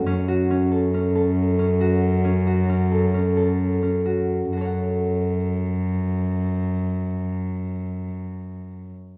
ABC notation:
X:1
M:5/4
L:1/8
Q:1/4=129
K:F#m
V:1 name="Harp"
C F C A C A2 C F2 | C F C A C A2 C F2 | [FAcf]8- [FAcf]2- | [FAcf]8- [FAcf]2 |]
V:2 name="Cello" clef=bass
F,,8- F,,2- | F,,8- F,,2 | F,,8- F,,2- | F,,8- F,,2 |]